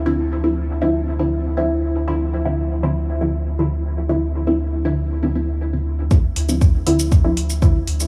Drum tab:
HH |----------------|----------------|----------------|--o---o---o---o-|
SH |----------------|----------------|----------------|x--xx--xx--xx--x|
BD |----------------|----------------|----------------|o---o---o---o---|